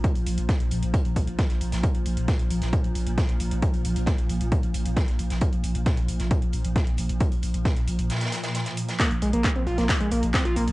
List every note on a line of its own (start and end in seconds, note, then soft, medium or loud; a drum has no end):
0.00 8.98 A#2 medium
0.00 8.98 F3 medium
0.04 kick loud
0.04 closed hi-hat medium
0.15 0.26 A#1 medium
0.15 closed hi-hat soft
0.15 open hi-hat medium
0.26 0.37 A#1 loud
0.26 closed hi-hat medium
0.26 open hi-hat loud
0.38 0.49 A#1 medium
0.38 closed hi-hat soft
0.38 closed hi-hat medium
0.49 kick loud
0.49 snare loud
0.49 closed hi-hat medium
0.60 0.71 A#1 medium
0.60 closed hi-hat soft
0.71 0.82 A#1 loud
0.71 closed hi-hat medium
0.71 open hi-hat loud
0.83 0.94 A#1 medium
0.83 closed hi-hat medium
0.94 kick loud
0.94 closed hi-hat medium
1.05 1.16 A#1 medium
1.05 closed hi-hat medium
1.16 1.27 A#1 loud
1.16 kick medium
1.16 closed hi-hat medium
1.16 open hi-hat loud
1.27 1.38 A#1 medium
1.27 closed hi-hat medium
1.38 kick loud
1.38 snare loud
1.38 closed hi-hat medium
1.49 1.60 A#1 medium
1.49 snare soft
1.49 closed hi-hat soft
1.60 1.72 A#1 loud
1.60 closed hi-hat medium
1.60 open hi-hat loud
1.72 1.83 A#1 medium
1.72 snare medium
1.72 open hi-hat medium
1.83 kick loud
1.83 closed hi-hat medium
1.94 2.05 A#1 medium
1.94 closed hi-hat medium
2.05 2.16 A#1 loud
2.05 closed hi-hat medium
2.05 open hi-hat loud
2.17 2.28 A#1 medium
2.17 closed hi-hat soft
2.28 kick loud
2.28 snare loud
2.28 closed hi-hat medium
2.39 2.50 A#1 medium
2.39 closed hi-hat soft
2.50 2.61 A#1 loud
2.50 closed hi-hat medium
2.50 open hi-hat loud
2.62 2.73 A#1 medium
2.62 snare soft
2.62 closed hi-hat soft
2.73 kick loud
2.73 closed hi-hat medium
2.84 2.95 A#1 medium
2.84 closed hi-hat soft
2.95 3.06 A#1 loud
2.95 closed hi-hat medium
2.95 open hi-hat loud
3.06 3.17 A#1 medium
3.06 closed hi-hat soft
3.17 kick loud
3.17 snare loud
3.17 closed hi-hat medium
3.29 3.39 A#1 medium
3.29 closed hi-hat soft
3.40 3.51 A#1 loud
3.40 closed hi-hat medium
3.40 open hi-hat loud
3.51 3.62 A#1 medium
3.51 closed hi-hat soft
3.62 kick loud
3.62 closed hi-hat medium
3.73 3.84 A#1 medium
3.73 closed hi-hat soft
3.73 open hi-hat medium
3.85 3.95 A#1 loud
3.85 closed hi-hat medium
3.85 open hi-hat loud
3.96 4.07 A#1 medium
3.96 closed hi-hat soft
4.06 kick loud
4.06 snare loud
4.06 closed hi-hat medium
4.18 4.29 A#1 medium
4.18 closed hi-hat soft
4.29 4.40 A#1 loud
4.29 closed hi-hat medium
4.29 open hi-hat loud
4.41 4.52 A#1 medium
4.41 closed hi-hat soft
4.52 kick loud
4.52 closed hi-hat medium
4.63 4.74 A#1 medium
4.63 closed hi-hat soft
4.74 4.85 A#1 loud
4.74 closed hi-hat medium
4.74 open hi-hat loud
4.86 4.96 A#1 medium
4.86 closed hi-hat medium
4.96 kick loud
4.96 snare loud
4.96 closed hi-hat medium
5.07 5.18 A#1 medium
5.07 snare soft
5.07 closed hi-hat soft
5.19 5.30 A#1 loud
5.19 closed hi-hat medium
5.19 open hi-hat loud
5.30 5.41 A#1 medium
5.30 snare medium
5.30 closed hi-hat soft
5.41 kick loud
5.41 closed hi-hat medium
5.53 5.63 A#1 medium
5.53 closed hi-hat medium
5.63 5.74 A#1 loud
5.63 closed hi-hat medium
5.63 open hi-hat loud
5.75 5.86 A#1 medium
5.75 closed hi-hat soft
5.86 kick loud
5.86 snare loud
5.86 closed hi-hat loud
5.86 closed hi-hat medium
5.97 6.08 A#1 medium
5.97 closed hi-hat medium
6.08 6.19 A#1 loud
6.08 closed hi-hat medium
6.08 open hi-hat loud
6.19 6.31 A#1 medium
6.19 snare soft
6.19 closed hi-hat soft
6.31 kick loud
6.31 closed hi-hat medium
6.42 6.53 A#1 medium
6.42 closed hi-hat soft
6.53 6.64 A#1 loud
6.53 closed hi-hat medium
6.53 open hi-hat loud
6.65 6.76 A#1 medium
6.65 closed hi-hat soft
6.76 kick loud
6.76 snare loud
6.76 closed hi-hat medium
6.87 6.98 A#1 medium
6.87 closed hi-hat medium
6.97 7.09 A#1 loud
6.97 closed hi-hat medium
6.97 open hi-hat loud
7.09 7.20 A#1 medium
7.09 closed hi-hat medium
7.20 kick loud
7.20 closed hi-hat medium
7.32 7.42 A#1 medium
7.32 closed hi-hat soft
7.32 open hi-hat medium
7.42 7.54 A#1 loud
7.42 closed hi-hat medium
7.42 open hi-hat loud
7.54 7.65 A#1 medium
7.54 closed hi-hat soft
7.65 kick loud
7.65 snare loud
7.65 closed hi-hat medium
7.77 7.87 A#1 medium
7.77 closed hi-hat medium
7.88 7.98 A#1 medium
7.88 closed hi-hat medium
7.88 open hi-hat loud
7.99 8.10 A#1 medium
7.99 closed hi-hat medium
8.10 snare loud
8.10 closed hi-hat medium
8.15 snare medium
8.15 closed hi-hat medium
8.21 snare medium
8.21 closed hi-hat medium
8.26 snare medium
8.26 closed hi-hat medium
8.32 snare medium
8.32 closed hi-hat medium
8.32 open hi-hat loud
8.43 snare loud
8.43 closed hi-hat medium
8.54 snare loud
8.54 closed hi-hat medium
8.66 snare soft
8.66 closed hi-hat medium
8.77 closed hi-hat medium
8.77 open hi-hat loud
8.89 snare medium
8.89 open hi-hat medium
8.99 10.72 A#2 medium
8.99 10.72 F3 medium
8.99 9.06 A#3 medium
8.99 kick loud
8.99 clap loud
8.99 closed hi-hat loud
8.99 closed hi-hat medium
9.11 9.22 A#1 medium
9.11 closed hi-hat medium
9.22 9.33 A#1 loud
9.22 9.28 G#3 medium
9.22 closed hi-hat medium
9.22 open hi-hat loud
9.33 9.44 A#1 medium
9.33 9.42 A#3 medium
9.33 closed hi-hat medium
9.44 kick loud
9.44 snare loud
9.44 clap loud
9.44 closed hi-hat medium
9.56 9.66 A#1 medium
9.56 9.59 C4 medium
9.56 closed hi-hat medium
9.67 9.78 A#1 loud
9.67 9.76 F4 loud
9.67 closed hi-hat medium
9.67 open hi-hat loud
9.78 9.89 A#1 medium
9.78 9.84 A#3 medium
9.78 snare soft
9.78 closed hi-hat medium
9.89 kick loud
9.89 clap loud
9.89 closed hi-hat medium
10.00 10.11 A#1 medium
10.00 10.06 G#3 medium
10.00 closed hi-hat medium
10.11 10.22 A#1 loud
10.11 10.20 A#3 medium
10.11 closed hi-hat medium
10.11 open hi-hat loud
10.23 10.34 A#1 medium
10.23 closed hi-hat medium
10.33 10.38 C4 medium
10.33 kick loud
10.33 snare loud
10.33 clap loud
10.33 closed hi-hat medium
10.45 10.56 A#1 medium
10.45 10.54 F4 loud
10.45 closed hi-hat medium
10.56 10.67 A#1 loud
10.56 10.62 A#3 medium
10.56 closed hi-hat medium
10.56 open hi-hat loud
10.68 10.72 A#1 medium
10.68 closed hi-hat medium